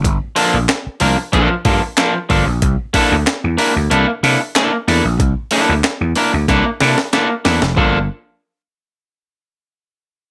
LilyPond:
<<
  \new Staff \with { instrumentName = "Clean electric guitar" } { \time 4/4 \key g \dorian \tempo 4 = 93 r8 <f bes d' a'>8 r8 <f bes d' bes'>16 r16 <f bes d' a'>8 <f bes d' a'>16 r16 <f bes d' a'>8 <f bes d' a'>16 r16 | r8 <bes d' e' a'>8 r8 <bes d' e' bes'>16 r16 <bes d' e' a'>8 <bes d' e' a'>16 r16 <bes d' e' a'>8 <bes d' e' a'>16 r16 | r8 <bes d' e' a'>8 r8 <bes d' e' bes'>16 r16 <bes d' e' a'>8 <bes d' e' a'>16 r16 <bes d' e' a'>8 <bes d' e' a'>16 r16 | <f bes d' a'>8 r2. r8 | }
  \new Staff \with { instrumentName = "Slap bass" } { \clef bass \time 4/4 \key g \dorian g,,16 r8 bes,,16 r8 c,16 r16 bes,,16 r16 g,16 r8. g,,16 bes,,16 | c,16 r8 d,16 r16 e,16 r16 d,16 c,16 r16 c16 r8. e,16 bes,,16 | c,16 r8 d,16 r16 e,16 r16 d,16 c,16 r16 c16 r8. e,16 f,,16 | g,,8 r2. r8 | }
  \new DrumStaff \with { instrumentName = "Drums" } \drummode { \time 4/4 <hh bd>8 hho8 <hc hh sn>8 hho8 <hh bd>8 <hho bd>8 <hc hh sn>8 <hho bd>8 | <hh bd>8 <hho bd>8 <hc hh sn>8 hho8 hh8 hho8 <hc hh sn>8 hho8 | <hh bd>8 hho8 <hc hh sn>8 hho8 <hh bd sn>8 <hho sn>16 sn16 <hh sn>8 <hho sn>16 sn16 | bd4 r4 r4 r4 | }
>>